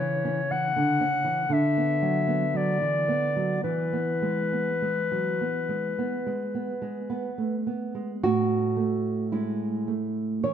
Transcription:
Already playing: nylon-string guitar C#3 C#4, clarinet C#5
0.00 nylon-string guitar E3
0.25 nylon-string guitar C#4
0.51 nylon-string guitar E3, clarinet F#5
0.76 nylon-string guitar D3
1.01 nylon-string guitar C#4
1.24 nylon-string guitar E3
1.49 nylon-string guitar D3, clarinet E5
1.77 nylon-string guitar B3
2.02 nylon-string guitar F#3
2.27 nylon-string guitar B3
2.54 nylon-string guitar F#3, clarinet D5
2.81 nylon-string guitar E3
3.08 nylon-string guitar B3
3.36 nylon-string guitar F#3
3.63 nylon-string guitar E3, clarinet B4
3.93 nylon-string guitar B3
4.22 nylon-string guitar G#3
4.52 nylon-string guitar B3
4.82 nylon-string guitar G#3
5.11 nylon-string guitar F#3
5.41 nylon-string guitar B3
5.69 nylon-string guitar G#3
5.98 nylon-string guitar B3
6.26 nylon-string guitar G#3
6.55 nylon-string guitar B3
6.82 nylon-string guitar G#3
7.10 nylon-string guitar B3
7.38 nylon-string guitar A3
7.67 nylon-string guitar B3
7.95 nylon-string guitar G#3
8.23 nylon-string guitar A2 F#4
8.77 nylon-string guitar A3
9.32 nylon-string guitar G#3 E4
9.88 nylon-string guitar A3
10.44 nylon-string guitar E3 C#5

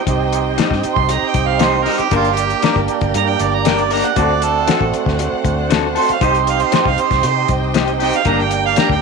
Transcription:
Already playing: string section C5 D#5 G5
0.07 fingered electric bass C2, tonewheel organ C4 D#4 G4, kick, closed hi-hat
0.33 closed hi-hat
0.58 clean electric guitar C3 G3 C4 D#4, snare, closed hi-hat
0.71 fingered electric bass G2, kick, snare
0.83 muted fingered electric bass stroke, closed hi-hat
0.95 fingered electric bass C2, harmonica C6, kick
1.09 harmonica A#5, closed hi-hat
1.29 harmonica G5
1.34 fingered electric bass C2, kick, closed hi-hat
1.47 harmonica F5
1.59 clean electric guitar C3 G3 C4 D#4, snare, closed hi-hat
1.64 harmonica C5
1.82 clean electric guitar D#4, harmonica A#4, open hi-hat
1.87 clean electric guitar G3 C4
1.98 harmonica G4, muted fingered electric bass stroke, closed hi-hat
2.11 fingered electric bass G1, clean electric guitar G3 A#3 D4 A#4, tonewheel organ A#3 D4 G4, string section A#4 D5, kick, closed hi-hat
2.16 harmonica F4
2.25 closed hi-hat
2.33 harmonica G4
2.37 closed hi-hat
2.50 closed hi-hat
2.62 clean electric guitar G3 A#3 D4 A#4, muted fingered electric bass stroke, snare, closed hi-hat
2.76 fingered electric bass G1, kick
2.88 closed hi-hat
3.01 fingered electric bass G1, kick, closed hi-hat
3.14 fingered electric bass G2, harmonica A#5, closed hi-hat
3.28 harmonica G5
3.39 fingered electric bass G1, harmonica D5, closed hi-hat
3.55 harmonica A#5
3.65 clean electric guitar G3 A#3 D4 A#4, harmonica G5, snare, closed hi-hat
3.78 harmonica D5, closed hi-hat
3.91 clean electric guitar A#3 D4 A#4, harmonica A#5, open hi-hat
4.04 harmonica F#5, closed hi-hat
4.16 fingered electric bass D2, clean electric guitar D3 C4 F#4 A4, tonewheel organ A3 C4 F#4, string section C5 F#5, harmonica D5, kick, closed hi-hat
4.42 harmonica A4, closed hi-hat
4.68 clean electric guitar D3 C4 F#4 A4, snare, closed hi-hat
4.81 fingered electric bass A1, kick
4.94 muted fingered electric bass stroke, closed hi-hat
5.06 fingered electric bass D2, kick, snare
5.19 closed hi-hat
5.33 muted fingered electric bass stroke
5.45 fingered electric bass D2, kick, closed hi-hat
5.70 clean electric guitar D3 C4 F#4 A4, snare, closed hi-hat
5.95 clean electric guitar C4 F#4 A4, harmonica C6, open hi-hat
6.09 harmonica F5, muted fingered electric bass stroke, closed hi-hat
6.20 fingered electric bass C2, clean electric guitar C3 C4 D#4 G4, tonewheel organ C4 D#4 G4, harmonica C5, string section D#5 G5, kick, closed hi-hat
6.35 harmonica C6, closed hi-hat
6.47 harmonica F5, closed hi-hat
6.60 harmonica C5, closed hi-hat
6.72 clean electric guitar C3 C4 D#4 G4, harmonica C6, muted fingered electric bass stroke, snare, closed hi-hat
6.85 fingered electric bass C2, harmonica F5, kick
6.98 harmonica C5, closed hi-hat
7.11 fingered electric bass C2, kick, snare, closed hi-hat
7.23 fingered electric bass C3, harmonica C5, closed hi-hat
7.48 fingered electric bass C2, kick, closed hi-hat
7.74 clean electric guitar C3 C4 D#4 G4, snare, closed hi-hat
7.87 closed hi-hat
8.00 clean electric guitar C4 D#4 G4, harmonica G5, open hi-hat
8.13 harmonica F5, closed hi-hat
8.25 fingered electric bass G1, clean electric guitar G3 A#3 D4 G4, tonewheel organ A#3 D4 G4, string section A#4 D5, harmonica A#5, kick, closed hi-hat
8.41 harmonica G5
8.51 harmonica G5, closed hi-hat
8.66 harmonica F5
8.76 clean electric guitar G3 A#3 D4 G4, harmonica A#5, snare, closed hi-hat
8.90 fingered electric bass D2, harmonica G5, kick

